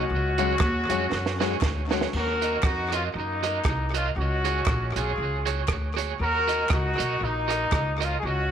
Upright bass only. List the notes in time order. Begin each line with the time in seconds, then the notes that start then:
0.10 C#2
0.61 D#2
0.90 F2
1.11 F#2
1.62 D2
2.13 D#2
2.63 F2
3.15 F#2
3.65 C2
4.16 C#2
4.67 A#1
4.96 B1
5.18 C#2
5.69 D2
6.20 D#2
6.71 C#2
6.99 B1
7.21 A#1
7.72 C#2
8.23 C#2